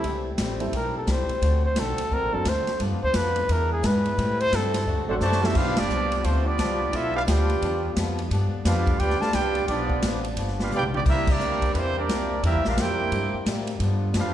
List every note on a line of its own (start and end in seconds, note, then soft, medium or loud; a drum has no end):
0.00 0.37 C2 loud
0.00 0.24 E4 medium
0.00 ride medium
0.04 0.27 A2 soft
0.04 1.41 E3 medium
0.04 0.28 G3 soft
0.04 1.41 A3 medium
0.04 0.28 C4 soft
0.04 2.78 C4 medium
0.04 0.29 E4 medium
0.04 1.41 G4 medium
0.04 kick soft
0.38 0.72 A1 loud
0.38 0.62 A2 medium
0.38 0.62 G3 medium
0.38 0.62 C4 medium
0.38 0.63 E4 medium
0.38 kick soft
0.38 snare medium
0.38 hi-hat pedal medium
0.38 ride medium
0.60 0.72 G3 medium
0.60 0.72 A3 medium
0.60 0.72 C4 medium
0.60 0.72 E4 medium
0.60 0.72 A4 medium
0.60 ride medium
0.72 1.06 B1 medium
0.72 0.97 A2 soft
0.72 0.97 G3 soft
0.72 0.97 C4 soft
0.72 0.97 E4 medium
0.72 kick soft
0.72 ride medium
0.76 0.95 A#4 medium
0.97 1.13 A4 medium
1.07 1.28 C2 loud
1.07 1.30 A2 medium
1.07 1.31 G3 medium
1.07 1.31 C4 medium
1.07 1.31 E4 medium
1.07 kick soft
1.07 snare medium
1.07 hi-hat pedal medium
1.07 ride medium
1.11 1.65 C5 medium
1.29 muted upright bass stroke soft
1.29 ride medium
1.41 1.75 D2 loud
1.41 1.65 D3 soft
1.41 4.15 D3 medium
1.41 2.79 A3 medium
1.41 1.66 A3 soft
1.41 1.66 C4 soft
1.41 2.79 F#4 medium
1.41 1.66 F#4 soft
1.41 kick soft
1.41 ride medium
1.66 1.81 C5 medium
1.76 1.96 B1 loud
1.76 2.00 D3 medium
1.76 2.00 A3 medium
1.76 2.00 C4 medium
1.76 2.00 F#4 medium
1.76 2.15 A4 medium
1.76 kick soft
1.76 snare medium
1.76 hi-hat pedal medium
1.76 ride medium
1.98 muted upright bass stroke soft
1.98 ride medium
2.10 2.22 C2 medium
2.10 2.34 D3 soft
2.10 2.34 A3 soft
2.10 2.34 C4 medium
2.10 2.35 F#4 medium
2.10 2.35 A#4 loud
2.10 kick soft
2.22 2.33 A1 medium
2.33 2.45 F#1 medium
2.33 2.44 F#3 medium
2.33 2.44 A3 medium
2.33 2.45 C4 medium
2.33 2.44 D4 medium
2.33 2.45 A4 medium
2.33 2.50 A4 medium
2.45 2.65 D2 medium
2.45 2.68 D3 medium
2.45 2.69 A3 medium
2.45 2.69 C4 medium
2.45 2.69 F#4 medium
2.45 2.82 C5 medium
2.45 kick soft
2.45 snare medium
2.45 hi-hat pedal medium
2.45 ride medium
2.66 muted upright bass stroke soft
2.66 snare soft
2.66 ride medium
2.79 3.03 G2 medium
2.79 2.92 G2 loud
2.79 3.03 F3 medium
2.79 3.48 G3 medium
2.79 4.16 B3 medium
2.79 3.03 B3 medium
2.79 3.04 D4 medium
2.79 3.48 F4 medium
2.79 kick soft
2.79 ride medium
2.92 3.03 F2 medium
3.03 3.14 D2 medium
3.03 3.18 C5 loud
3.14 3.48 F2 loud
3.14 3.38 G2 medium
3.14 3.38 F3 medium
3.14 3.38 B3 medium
3.14 3.38 D4 medium
3.14 3.53 B4 loud
3.14 kick soft
3.14 snare medium
3.14 hi-hat pedal medium
3.14 ride medium
3.36 ride medium
3.48 3.82 E2 medium
3.48 3.72 E3 soft
3.48 4.16 G#3 medium
3.48 3.72 B3 medium
3.48 3.73 D4 medium
3.48 4.17 E4 medium
3.48 3.73 G#4 medium
3.48 kick soft
3.48 ride medium
3.52 3.72 A#4 loud
3.72 3.87 G#4 medium
3.83 4.17 G#2 loud
3.83 4.06 E3 medium
3.83 4.06 B3 medium
3.83 4.06 D4 medium
3.83 4.06 G#4 medium
3.83 4.42 B4 medium
3.83 kick soft
3.83 snare medium
3.83 hi-hat pedal medium
3.83 ride medium
4.06 ride soft
4.17 4.40 A2 medium
4.17 4.51 A2 loud
4.17 4.85 C3 medium
4.17 4.41 G3 medium
4.17 4.86 G3 medium
4.17 4.85 A3 medium
4.17 4.41 C4 medium
4.17 4.41 E4 medium
4.17 4.87 E4 medium
4.17 kick soft
4.17 ride medium
4.40 4.57 C5 loud
4.40 ride medium
4.52 4.86 G2 medium
4.52 4.75 A2 medium
4.52 4.75 G3 medium
4.52 4.76 C4 medium
4.52 4.76 E4 medium
4.52 5.10 A4 loud
4.52 kick soft
4.52 snare medium
4.52 hi-hat pedal medium
4.52 ride medium
4.74 snare medium
4.74 ride medium
4.86 4.98 D2 medium
4.86 5.38 C3 medium
4.86 5.09 D3 soft
4.86 5.38 F#3 medium
4.86 5.38 A3 medium
4.86 5.10 A3 medium
4.86 5.10 C4 medium
4.86 5.38 D4 medium
4.86 5.11 F#4 medium
4.86 kick soft
4.98 5.08 C2 medium
5.08 5.20 A1 medium
5.08 5.20 F#3 medium
5.08 5.14 A3 medium
5.08 5.20 A3 medium
5.08 5.14 C4 medium
5.08 5.20 C4 medium
5.08 5.20 D4 medium
5.08 5.15 D4 medium
5.08 5.14 F#4 medium
5.08 5.20 A4 medium
5.08 5.15 A4 medium
5.08 5.15 C5 medium
5.08 5.15 F#5 medium
5.20 5.54 F#2 loud
5.20 5.41 C3 medium
5.20 5.44 D3 medium
5.20 5.41 F#3 loud
5.20 5.41 A3 loud
5.20 5.44 A3 medium
5.20 5.45 C4 medium
5.20 5.41 F#4 loud
5.20 5.45 F#4 medium
5.20 5.41 C5 loud
5.20 5.41 D5 medium
5.20 5.41 A5 loud
5.20 snare medium
5.20 hi-hat pedal medium
5.32 snare medium
5.41 5.54 F3 medium
5.41 5.54 G3 medium
5.41 5.54 B3 medium
5.41 5.56 C4 medium
5.41 5.55 D4 medium
5.41 5.55 E4 medium
5.41 5.56 F#4 medium
5.41 5.55 A4 medium
5.41 5.56 E5 loud
5.41 snare medium
5.52 5.68 B1 loud
5.52 5.78 G2 soft
5.52 11.01 D3 medium
5.52 5.79 F3 medium
5.52 13.76 G3 medium
5.52 5.74 B3 medium
5.52 11.01 B3 medium
5.52 5.73 D4 loud
5.52 5.77 D4 medium
5.52 5.76 F4 loud
5.52 8.28 F4 medium
5.52 5.76 G4 medium
5.52 5.77 B4 medium
5.52 5.77 F5 loud
5.52 kick medium
5.52 crash medium
5.57 5.79 B3 soft
5.57 5.79 D4 medium
5.67 5.77 G1 medium
5.74 5.88 F1 medium
5.74 6.23 F3 medium
5.74 6.23 B3 medium
5.74 6.24 B3 medium
5.74 6.23 D4 medium
5.74 6.23 F4 loud
5.74 6.24 G4 medium
5.74 6.24 D5 loud
5.74 snare medium
5.74 ride medium
5.89 6.23 C2 loud
5.89 6.13 G2 medium
5.89 6.13 F3 medium
5.89 6.13 B3 medium
5.89 6.13 D4 medium
5.89 hi-hat pedal medium
6.12 ride medium
6.23 6.58 D2 medium
6.23 6.47 G2 soft
6.23 6.47 F3 medium
6.23 6.46 A3 medium
6.23 6.48 B3 soft
6.23 6.45 C4 medium
6.23 6.46 D4 medium
6.23 6.48 D4 medium
6.23 6.45 F4 medium
6.23 6.46 C5 loud
6.23 kick soft
6.23 ride medium
6.44 6.92 F3 medium
6.44 6.92 B3 medium
6.44 6.93 B3 medium
6.44 6.92 D4 medium
6.44 6.92 F4 medium
6.44 6.93 G4 medium
6.44 6.93 D5 medium
6.58 6.92 C2 medium
6.58 6.81 G2 medium
6.58 6.82 F3 medium
6.58 6.82 B3 medium
6.58 6.82 D4 medium
6.58 kick soft
6.58 snare medium
6.58 hi-hat pedal medium
6.58 ride medium
6.92 7.26 B1 medium
6.92 7.16 G2 medium
6.92 7.16 F3 medium
6.92 7.17 B3 medium
6.92 7.15 C4 medium
6.92 7.17 D4 medium
6.92 7.14 E4 medium
6.92 7.15 F4 medium
6.92 7.15 A4 medium
6.92 7.15 E5 loud
6.92 kick soft
6.92 ride medium
7.14 7.20 B3 medium
7.14 7.20 D4 medium
7.14 7.21 D4 medium
7.14 7.20 F4 medium
7.14 7.21 G4 medium
7.14 7.21 B4 medium
7.14 7.21 F5 loud
7.27 7.61 D2 loud
7.27 7.50 G2 medium
7.27 7.51 F3 medium
7.27 7.92 B3 medium
7.27 7.51 B3 medium
7.27 7.92 D4 medium
7.27 7.51 D4 medium
7.27 7.92 F4 medium
7.27 7.92 G4 medium
7.27 7.92 B4 medium
7.27 7.92 D5 medium
7.27 7.92 G5 medium
7.27 kick soft
7.27 snare medium
7.27 hi-hat pedal medium
7.27 ride medium
7.50 ride medium
7.62 7.95 E2 loud
7.62 7.85 G2 soft
7.62 7.85 F3 medium
7.62 7.86 B3 medium
7.62 7.86 D4 medium
7.62 kick soft
7.62 ride medium
7.96 8.30 F2 loud
7.96 8.20 G2 medium
7.96 8.20 F3 medium
7.96 8.21 B3 medium
7.96 8.21 D4 medium
7.96 kick soft
7.96 snare medium
7.96 hi-hat pedal medium
7.96 ride medium
8.19 ride soft
8.29 8.51 G2 loud
8.29 8.54 G2 medium
8.29 8.54 F3 medium
8.29 8.55 B3 medium
8.29 13.76 D4 medium
8.29 kick soft
8.29 ride medium
8.34 8.55 D4 medium
8.52 muted upright bass stroke soft
8.65 8.98 F2 loud
8.65 8.88 G2 medium
8.65 8.88 F3 medium
8.65 8.97 B3 medium
8.65 8.88 B3 medium
8.65 8.97 D4 medium
8.65 8.89 D4 medium
8.65 8.97 F4 medium
8.65 8.97 G4 medium
8.65 8.97 B4 medium
8.65 8.97 F5 medium
8.65 kick soft
8.65 snare loud
8.65 hi-hat pedal medium
8.65 ride medium
8.87 kick medium
8.87 ride soft
8.98 9.19 D2 medium
8.98 9.23 G2 medium
8.98 9.23 F3 medium
8.98 9.21 B3 medium
8.98 9.24 B3 medium
8.98 9.21 D4 medium
8.98 9.19 F4 medium
8.98 9.20 G4 medium
8.98 9.20 B4 medium
8.98 9.20 D5 loud
8.98 9.21 G5 loud
8.98 kick soft
8.98 ride medium
9.03 9.24 D4 medium
9.10 snare soft
9.18 9.32 A3 medium
9.18 9.32 F4 medium
9.18 9.32 B4 medium
9.18 9.32 D5 medium
9.18 9.34 A5 loud
9.18 muted upright bass stroke soft
9.18 snare medium
9.30 9.67 C2 medium
9.30 9.65 B3 medium
9.30 9.65 D4 medium
9.30 9.67 F4 medium
9.30 9.67 G4 loud
9.30 9.68 B4 medium
9.30 9.67 D5 loud
9.30 9.68 G5 loud
9.30 kick soft
9.30 snare medium
9.30 hi-hat pedal medium
9.30 ride medium
9.35 9.57 G2 medium
9.35 9.57 F3 medium
9.35 9.58 B3 medium
9.35 9.58 D4 medium
9.55 ride medium
9.66 10.01 B1 loud
9.66 9.91 G2 soft
9.66 10.19 F3 medium
9.66 9.92 F3 medium
9.66 10.19 B3 medium
9.66 10.20 B3 medium
9.66 9.92 B3 soft
9.66 10.19 D4 medium
9.66 10.20 F4 medium
9.66 10.20 G4 medium
9.66 10.20 D5 medium
9.66 kick soft
9.66 ride medium
9.71 9.92 D4 medium
9.90 kick medium
10.02 10.36 A1 loud
10.02 10.26 G2 medium
10.02 10.26 F3 medium
10.02 10.26 B3 medium
10.02 10.26 D4 medium
10.02 kick soft
10.02 snare loud
10.02 hi-hat pedal medium
10.02 ride loud
10.24 ride medium
10.36 10.70 G1 medium
10.36 10.60 G2 medium
10.36 10.60 F3 medium
10.36 10.61 B3 medium
10.36 10.61 D4 medium
10.36 kick soft
10.36 ride medium
10.48 snare soft
10.60 10.71 B3 medium
10.60 10.71 D4 medium
10.60 10.72 D4 medium
10.60 10.71 F4 medium
10.60 10.72 G4 medium
10.60 10.72 B4 medium
10.60 10.72 F5 loud
10.60 snare medium
10.70 11.04 B1 loud
10.70 10.94 G2 medium
10.70 10.95 F3 medium
10.70 10.95 B3 medium
10.70 10.82 B3 medium
10.70 10.95 D4 medium
10.70 10.83 D4 medium
10.70 10.82 G4 loud
10.70 10.83 D5 loud
10.70 hi-hat pedal medium
10.70 mid tom medium
10.74 10.84 F4 medium
10.74 10.84 B4 medium
10.74 10.84 G5 loud
10.83 mid tom medium
10.94 11.00 F3 medium
10.94 11.00 B3 medium
10.94 11.01 B3 medium
10.94 11.00 D4 medium
10.94 11.01 F4 medium
10.94 11.01 G4 medium
10.94 11.01 D5 loud
10.94 mid tom medium
11.04 11.39 C2 loud
11.04 13.77 C3 medium
11.04 11.28 C3 soft
11.04 11.29 G3 medium
11.04 11.27 G3 medium
11.04 11.29 A#3 medium
11.04 11.27 A#3 loud
11.04 11.27 C4 medium
11.04 11.29 E4 medium
11.04 11.27 E4 medium
11.04 11.27 G4 medium
11.04 13.77 A#4 medium
11.04 11.27 A#4 medium
11.04 11.27 E5 loud
11.04 kick medium
11.04 crash medium
11.27 11.72 G3 medium
11.27 11.72 A#3 medium
11.27 11.73 C4 medium
11.27 11.72 D4 medium
11.27 11.73 G4 medium
11.27 11.73 A#4 medium
11.27 11.73 D5 loud
11.27 kick loud
11.27 crash medium
11.39 11.73 D2 loud
11.39 11.63 C3 medium
11.39 11.63 G3 medium
11.39 11.63 A#3 medium
11.39 11.64 E4 medium
11.39 hi-hat pedal medium
11.62 kick medium
11.62 ride medium
11.72 12.08 E2 medium
11.72 11.97 C3 medium
11.72 11.97 E3 medium
11.72 11.98 G3 soft
11.72 11.96 G3 medium
11.72 11.98 A#3 medium
11.72 11.97 A#3 medium
11.72 11.97 C4 medium
11.72 11.96 G4 medium
11.72 11.75 B4 medium
11.72 11.97 C5 loud
11.72 kick soft
11.72 ride medium
11.76 11.97 E4 medium
11.76 11.98 E4 medium
11.97 12.40 G3 medium
11.97 12.40 A#3 medium
11.97 12.41 C4 medium
11.97 12.41 D4 medium
11.97 12.41 G4 medium
11.97 12.41 A#4 medium
11.97 12.41 D5 medium
12.09 12.42 C2 medium
12.09 12.32 C3 medium
12.09 12.33 G3 medium
12.09 12.33 A#3 medium
12.09 12.33 E4 medium
12.09 kick soft
12.09 snare medium
12.09 hi-hat pedal medium
12.09 ride medium
12.43 12.56 E2 loud
12.43 12.67 C3 soft
12.43 12.65 G3 medium
12.43 12.67 G3 medium
12.43 12.65 A#3 loud
12.43 12.67 A#3 soft
12.43 12.65 C4 medium
12.43 12.65 E4 medium
12.43 12.67 E4 medium
12.43 12.64 G4 medium
12.43 12.65 A#4 medium
12.43 12.66 E5 loud
12.43 kick soft
12.43 ride medium
12.55 12.66 C2 medium
12.65 12.77 A#1 medium
12.65 12.77 D4 medium
12.65 12.77 F4 medium
12.65 12.77 G4 medium
12.65 12.77 A#4 medium
12.65 12.77 F5 medium
12.65 snare medium
12.77 13.11 F2 medium
12.77 13.00 C3 medium
12.77 13.01 G3 medium
12.77 13.46 A#3 medium
12.77 13.01 A#3 medium
12.77 13.46 E4 medium
12.77 13.47 E4 medium
12.77 13.01 E4 medium
12.77 13.46 G4 medium
12.77 13.47 A#4 medium
12.77 13.47 C5 medium
12.77 13.47 G5 loud
12.77 kick soft
12.77 snare medium
12.77 hi-hat pedal medium
12.77 ride medium
13.11 13.32 G2 loud
13.11 13.35 C3 soft
13.11 13.35 G3 soft
13.11 13.36 A#3 medium
13.11 13.36 E4 medium
13.11 kick soft
13.11 ride medium
13.34 muted upright bass stroke soft
13.46 13.79 A2 loud
13.46 13.69 C3 medium
13.46 13.70 G3 medium
13.46 13.70 A#3 medium
13.46 13.70 E4 medium
13.46 kick soft
13.46 snare medium
13.46 hi-hat pedal medium
13.46 ride medium
13.67 ride medium
13.79 14.13 G2 loud
13.79 14.03 G2 medium
13.79 14.34 D3 medium
13.79 14.04 F3 medium
13.79 14.34 G3 medium
13.79 14.34 B3 medium
13.79 14.04 B3 medium
13.79 14.05 D4 medium
13.79 14.34 F4 medium
13.79 kick soft
13.79 ride medium
14.14 14.34 F2 medium
14.14 14.34 G2 medium
14.14 14.34 F3 medium
14.14 14.34 B3 medium
14.14 14.34 D4 medium
14.14 14.34 F4 medium
14.14 14.34 G4 medium
14.14 14.34 B4 medium
14.14 14.34 F5 medium
14.14 kick soft
14.14 snare medium
14.14 hi-hat pedal medium
14.14 ride medium
14.18 14.34 D4 medium